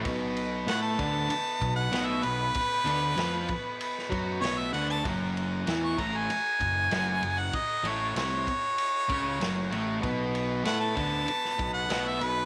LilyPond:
<<
  \new Staff \with { instrumentName = "Harmonica" } { \time 4/4 \key b \major \tempo 4 = 96 r4 fis''16 a''4. fis''8 e''16 b'8~ | b'2~ b'8 r8 cis''16 e''16 fis''16 a''16 | r4 r16 cis'''16 ais''16 gis''2 fis''16 | dis''8 cis''8 cis''2. |
r4 fis''16 a''4. fis''8 e''16 b'8 | }
  \new Staff \with { instrumentName = "Transistor combo organ" } { \time 4/4 \key b \major <b b'>1~ | <b b'>1 | <fis' ais''>1~ | <fis' ais''>1 |
<b b'>1 | }
  \new Staff \with { instrumentName = "Distorted electric guitar" } { \clef bass \time 4/4 \key b \major <b, b>4 <a a'>8 <d d'>8 r8 b,8 <b, b>8 b,8 | r8 <d d'>8 <eis eis'>8 r4 <fis fis'>8 <b, b>8 <d d'>8 | <fis, fis>4 <e e'>8 <a, a>8 r8 fis,8 <fis, fis>8 fis,8 | r8 <a, a>8 <bis, bis>8 r4 <cis cis'>8 <fis, fis>8 <a, a>8 |
<b, b>4 <a a'>8 <d d'>8 r8 b,8 <b, b>8 b,8 | }
  \new Staff \with { instrumentName = "Picked electric bass" } { \clef bass \time 4/4 \key b \major b,,4 a,8 d,8 r8 b,,8 b,,8 b,,8 | r8 d,8 eis,8 r4 fis,8 b,,8 d,8 | fis,,4 e,8 a,,8 r8 fis,,8 fis,,8 fis,,8 | r8 a,,8 bis,,8 r4 cis,8 fis,,8 a,,8 |
b,,4 a,8 d,8 r8 b,,8 b,,8 b,,8 | }
  \new DrumStaff \with { instrumentName = "Drums" } \drummode { \time 4/4 <bd cymr>8 cymr8 <cymr sn>8 <bd cymr>8 cymr8 <bd cymr>8 <cymr sn>8 cymr8 | <bd cymr>8 cymr8 <cymr sn>8 <bd cymr>8 cymr16 sn16 <bd cymr>8 <cymr sn>8 cymr8 | <bd cymr>8 cymr8 <cymr sn>8 <bd cymr>8 cymr8 <bd cymr>8 <cymr sn>8 cymr8 | <bd cymr>8 cymr8 <cymr sn>8 <bd cymr>8 cymr8 <bd cymr>8 <cymr sn>8 cymr8 |
<bd cymr>8 cymr8 <cymr sn>8 <bd cymr>8 cymr16 sn16 <bd cymr>8 <cymr sn>8 cymr8 | }
>>